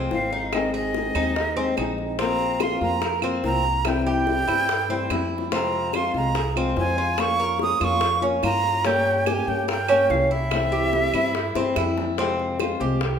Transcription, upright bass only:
0, 0, Header, 1, 2, 480
1, 0, Start_track
1, 0, Key_signature, -4, "minor"
1, 0, Tempo, 416089
1, 609, Time_signature, 4, 2, 24, 8
1, 15217, End_track
2, 0, Start_track
2, 0, Title_t, "Upright bass"
2, 0, Program_c, 0, 32
2, 127, Note_on_c, 0, 32, 84
2, 1257, Note_off_c, 0, 32, 0
2, 1323, Note_on_c, 0, 39, 91
2, 1999, Note_off_c, 0, 39, 0
2, 2049, Note_on_c, 0, 34, 86
2, 3177, Note_off_c, 0, 34, 0
2, 3240, Note_on_c, 0, 41, 86
2, 3917, Note_off_c, 0, 41, 0
2, 3959, Note_on_c, 0, 36, 85
2, 5093, Note_off_c, 0, 36, 0
2, 5162, Note_on_c, 0, 43, 86
2, 5838, Note_off_c, 0, 43, 0
2, 5882, Note_on_c, 0, 41, 80
2, 7014, Note_off_c, 0, 41, 0
2, 7083, Note_on_c, 0, 36, 91
2, 7759, Note_off_c, 0, 36, 0
2, 7807, Note_on_c, 0, 41, 92
2, 8938, Note_off_c, 0, 41, 0
2, 9005, Note_on_c, 0, 41, 89
2, 9680, Note_off_c, 0, 41, 0
2, 9725, Note_on_c, 0, 43, 90
2, 10856, Note_off_c, 0, 43, 0
2, 10927, Note_on_c, 0, 43, 89
2, 11601, Note_off_c, 0, 43, 0
2, 11645, Note_on_c, 0, 36, 91
2, 12776, Note_off_c, 0, 36, 0
2, 12843, Note_on_c, 0, 43, 92
2, 13291, Note_off_c, 0, 43, 0
2, 13325, Note_on_c, 0, 43, 66
2, 13549, Note_off_c, 0, 43, 0
2, 13567, Note_on_c, 0, 41, 81
2, 14696, Note_off_c, 0, 41, 0
2, 14769, Note_on_c, 0, 36, 91
2, 15217, Note_off_c, 0, 36, 0
2, 15217, End_track
0, 0, End_of_file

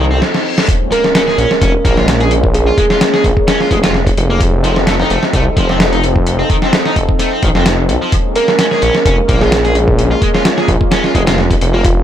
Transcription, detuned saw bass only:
0, 0, Header, 1, 2, 480
1, 0, Start_track
1, 0, Key_signature, -5, "minor"
1, 0, Tempo, 465116
1, 706, Time_signature, 4, 2, 24, 8
1, 12418, End_track
2, 0, Start_track
2, 0, Title_t, "Detuned saw bass"
2, 0, Program_c, 0, 39
2, 0, Note_on_c, 0, 36, 95
2, 225, Note_off_c, 0, 36, 0
2, 1426, Note_on_c, 0, 34, 99
2, 1504, Note_off_c, 0, 34, 0
2, 1666, Note_on_c, 0, 29, 97
2, 1819, Note_off_c, 0, 29, 0
2, 1908, Note_on_c, 0, 34, 93
2, 2797, Note_off_c, 0, 34, 0
2, 3347, Note_on_c, 0, 34, 102
2, 3425, Note_off_c, 0, 34, 0
2, 3828, Note_on_c, 0, 29, 93
2, 4237, Note_off_c, 0, 29, 0
2, 4307, Note_on_c, 0, 29, 91
2, 5197, Note_off_c, 0, 29, 0
2, 5265, Note_on_c, 0, 29, 100
2, 5344, Note_off_c, 0, 29, 0
2, 5506, Note_on_c, 0, 36, 96
2, 5659, Note_off_c, 0, 36, 0
2, 5744, Note_on_c, 0, 29, 95
2, 6635, Note_off_c, 0, 29, 0
2, 7184, Note_on_c, 0, 29, 101
2, 7264, Note_off_c, 0, 29, 0
2, 7665, Note_on_c, 0, 33, 99
2, 7744, Note_off_c, 0, 33, 0
2, 7796, Note_on_c, 0, 29, 89
2, 8148, Note_on_c, 0, 36, 92
2, 8164, Note_off_c, 0, 29, 0
2, 8225, Note_off_c, 0, 36, 0
2, 9108, Note_on_c, 0, 34, 99
2, 9185, Note_off_c, 0, 34, 0
2, 9345, Note_on_c, 0, 29, 96
2, 9498, Note_off_c, 0, 29, 0
2, 9586, Note_on_c, 0, 34, 96
2, 10476, Note_off_c, 0, 34, 0
2, 11024, Note_on_c, 0, 34, 101
2, 11103, Note_off_c, 0, 34, 0
2, 11505, Note_on_c, 0, 29, 95
2, 11916, Note_off_c, 0, 29, 0
2, 11988, Note_on_c, 0, 29, 85
2, 12418, Note_off_c, 0, 29, 0
2, 12418, End_track
0, 0, End_of_file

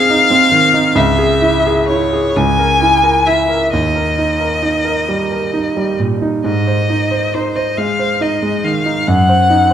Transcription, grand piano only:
0, 0, Header, 1, 2, 480
1, 0, Start_track
1, 0, Key_signature, -4, "major"
1, 0, Tempo, 845070
1, 538, Time_signature, 6, 3, 24, 8
1, 538, Tempo, 917431
1, 3418, Tempo, 869565
1, 5230, End_track
2, 0, Start_track
2, 0, Title_t, "Grand piano"
2, 0, Program_c, 0, 0
2, 0, Control_c, 0, 64, 127
2, 0, Note_on_c, 0, 44, 62
2, 0, Note_on_c, 0, 60, 53
2, 0, Note_on_c, 0, 63, 54
2, 0, Note_on_c, 0, 68, 54
2, 58, Note_off_c, 0, 63, 0
2, 58, Note_on_c, 0, 63, 55
2, 129, Note_off_c, 0, 68, 0
2, 173, Note_off_c, 0, 60, 0
2, 173, Note_on_c, 0, 60, 52
2, 245, Note_off_c, 0, 63, 0
2, 293, Note_on_c, 0, 51, 52
2, 364, Note_off_c, 0, 60, 0
2, 418, Note_on_c, 0, 63, 52
2, 488, Note_off_c, 0, 51, 0
2, 516, Note_off_c, 0, 44, 0
2, 540, Note_off_c, 0, 63, 0
2, 541, Note_on_c, 0, 37, 69
2, 547, Control_c, 0, 64, 0
2, 621, Control_c, 0, 64, 127
2, 662, Note_on_c, 0, 68, 57
2, 783, Note_on_c, 0, 64, 53
2, 857, Note_off_c, 0, 68, 0
2, 915, Note_on_c, 0, 68, 54
2, 981, Note_off_c, 0, 64, 0
2, 1036, Note_on_c, 0, 64, 52
2, 1110, Note_off_c, 0, 68, 0
2, 1157, Note_on_c, 0, 68, 53
2, 1230, Note_off_c, 0, 64, 0
2, 1256, Note_off_c, 0, 37, 0
2, 1277, Note_off_c, 0, 68, 0
2, 1279, Note_on_c, 0, 37, 59
2, 1286, Control_c, 0, 64, 0
2, 1393, Control_c, 0, 64, 127
2, 1396, Note_on_c, 0, 70, 47
2, 1515, Note_on_c, 0, 64, 51
2, 1582, Note_off_c, 0, 70, 0
2, 1631, Note_on_c, 0, 70, 45
2, 1700, Note_off_c, 0, 64, 0
2, 1754, Note_on_c, 0, 64, 42
2, 1819, Note_off_c, 0, 70, 0
2, 1869, Note_on_c, 0, 70, 43
2, 1941, Note_off_c, 0, 64, 0
2, 1966, Note_off_c, 0, 37, 0
2, 1987, Note_off_c, 0, 70, 0
2, 1994, Control_c, 0, 64, 0
2, 1995, Note_on_c, 0, 39, 51
2, 2093, Control_c, 0, 64, 127
2, 2113, Note_on_c, 0, 70, 44
2, 2231, Note_on_c, 0, 63, 44
2, 2299, Note_off_c, 0, 70, 0
2, 2344, Note_on_c, 0, 70, 42
2, 2416, Note_off_c, 0, 63, 0
2, 2461, Note_on_c, 0, 63, 42
2, 2531, Note_off_c, 0, 70, 0
2, 2578, Note_on_c, 0, 70, 44
2, 2649, Note_off_c, 0, 63, 0
2, 2703, Note_on_c, 0, 55, 41
2, 2768, Note_off_c, 0, 70, 0
2, 2825, Note_on_c, 0, 70, 41
2, 2891, Note_off_c, 0, 55, 0
2, 2938, Note_on_c, 0, 63, 41
2, 3013, Note_off_c, 0, 70, 0
2, 3059, Note_on_c, 0, 55, 37
2, 3130, Note_off_c, 0, 63, 0
2, 3178, Note_on_c, 0, 46, 36
2, 3252, Note_off_c, 0, 55, 0
2, 3295, Note_on_c, 0, 63, 39
2, 3370, Note_off_c, 0, 46, 0
2, 3401, Note_off_c, 0, 39, 0
2, 3412, Note_on_c, 0, 44, 56
2, 3415, Note_off_c, 0, 63, 0
2, 3428, Control_c, 0, 64, 0
2, 3510, Control_c, 0, 64, 127
2, 3539, Note_on_c, 0, 72, 44
2, 3665, Note_on_c, 0, 63, 46
2, 3736, Note_off_c, 0, 72, 0
2, 3782, Note_on_c, 0, 72, 46
2, 3859, Note_off_c, 0, 63, 0
2, 3911, Note_on_c, 0, 63, 43
2, 3978, Note_off_c, 0, 72, 0
2, 4030, Note_on_c, 0, 72, 47
2, 4102, Note_off_c, 0, 63, 0
2, 4151, Note_on_c, 0, 56, 43
2, 4221, Note_off_c, 0, 72, 0
2, 4269, Note_on_c, 0, 72, 43
2, 4342, Note_off_c, 0, 56, 0
2, 4387, Note_on_c, 0, 63, 45
2, 4460, Note_off_c, 0, 72, 0
2, 4507, Note_on_c, 0, 56, 43
2, 4579, Note_off_c, 0, 63, 0
2, 4627, Note_on_c, 0, 51, 39
2, 4699, Note_off_c, 0, 56, 0
2, 4746, Note_on_c, 0, 63, 42
2, 4818, Note_off_c, 0, 51, 0
2, 4841, Note_off_c, 0, 44, 0
2, 4865, Note_off_c, 0, 63, 0
2, 4868, Note_on_c, 0, 42, 53
2, 4876, Control_c, 0, 64, 0
2, 4956, Control_c, 0, 64, 127
2, 4985, Note_on_c, 0, 72, 41
2, 5101, Note_on_c, 0, 63, 41
2, 5172, Note_off_c, 0, 72, 0
2, 5230, Note_off_c, 0, 42, 0
2, 5230, Note_off_c, 0, 63, 0
2, 5230, End_track
0, 0, End_of_file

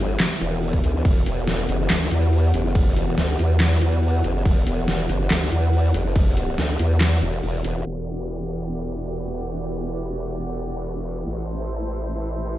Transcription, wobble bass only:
0, 0, Header, 1, 2, 480
1, 0, Start_track
1, 0, Key_signature, 1, "minor"
1, 0, Tempo, 425532
1, 1184, Time_signature, 4, 2, 24, 8
1, 14195, End_track
2, 0, Start_track
2, 0, Title_t, "Wobble bass"
2, 0, Program_c, 0, 39
2, 0, Note_on_c, 0, 31, 101
2, 206, Note_off_c, 0, 31, 0
2, 465, Note_on_c, 0, 28, 97
2, 926, Note_off_c, 0, 28, 0
2, 944, Note_on_c, 0, 38, 101
2, 1165, Note_off_c, 0, 38, 0
2, 1184, Note_on_c, 0, 28, 99
2, 1405, Note_off_c, 0, 28, 0
2, 1424, Note_on_c, 0, 28, 96
2, 1885, Note_off_c, 0, 28, 0
2, 1904, Note_on_c, 0, 30, 97
2, 2125, Note_off_c, 0, 30, 0
2, 2144, Note_on_c, 0, 38, 95
2, 2365, Note_off_c, 0, 38, 0
2, 2384, Note_on_c, 0, 40, 96
2, 2845, Note_off_c, 0, 40, 0
2, 2864, Note_on_c, 0, 30, 97
2, 3361, Note_off_c, 0, 30, 0
2, 3361, Note_on_c, 0, 29, 97
2, 3565, Note_off_c, 0, 29, 0
2, 3584, Note_on_c, 0, 38, 100
2, 3805, Note_off_c, 0, 38, 0
2, 3825, Note_on_c, 0, 40, 94
2, 4285, Note_off_c, 0, 40, 0
2, 4304, Note_on_c, 0, 40, 99
2, 4765, Note_off_c, 0, 40, 0
2, 4784, Note_on_c, 0, 30, 101
2, 5005, Note_off_c, 0, 30, 0
2, 5024, Note_on_c, 0, 28, 96
2, 5245, Note_off_c, 0, 28, 0
2, 5265, Note_on_c, 0, 28, 99
2, 5726, Note_off_c, 0, 28, 0
2, 5744, Note_on_c, 0, 30, 99
2, 5965, Note_off_c, 0, 30, 0
2, 5984, Note_on_c, 0, 38, 96
2, 6205, Note_off_c, 0, 38, 0
2, 6224, Note_on_c, 0, 40, 96
2, 6685, Note_off_c, 0, 40, 0
2, 6704, Note_on_c, 0, 30, 98
2, 7405, Note_off_c, 0, 30, 0
2, 7424, Note_on_c, 0, 38, 104
2, 7645, Note_off_c, 0, 38, 0
2, 7664, Note_on_c, 0, 40, 98
2, 8125, Note_off_c, 0, 40, 0
2, 8145, Note_on_c, 0, 28, 94
2, 8365, Note_off_c, 0, 28, 0
2, 8385, Note_on_c, 0, 28, 99
2, 8606, Note_off_c, 0, 28, 0
2, 8623, Note_on_c, 0, 28, 94
2, 8845, Note_off_c, 0, 28, 0
2, 8864, Note_on_c, 0, 28, 89
2, 12680, Note_off_c, 0, 28, 0
2, 12705, Note_on_c, 0, 33, 87
2, 14195, Note_off_c, 0, 33, 0
2, 14195, End_track
0, 0, End_of_file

